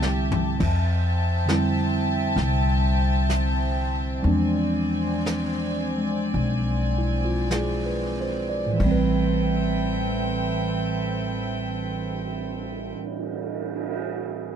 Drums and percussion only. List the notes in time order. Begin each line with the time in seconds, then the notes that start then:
0.02 snare
0.32 floor tom
0.60 brush sweep, kick, snare, crash
1.49 snare, hi-hat pedal
2.38 brush sweep, snare
3.30 snare, hi-hat pedal
4.25 brush sweep
5.26 snare, hi-hat pedal
6.34 brush sweep
7.51 snare, hi-hat pedal
8.80 kick, ride
9.71 cymbal swell